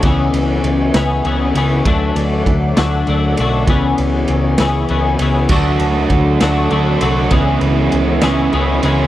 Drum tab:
CC |------|------|------|x-----|
RD |xxxxxx|xxxxxx|xxxxxx|-xxxxx|
SD |---o--|---o--|---o--|---o--|
BD |o-----|o-o---|o-----|o-o---|

CC |------|
RD |xxxxxx|
SD |---o--|
BD |o-----|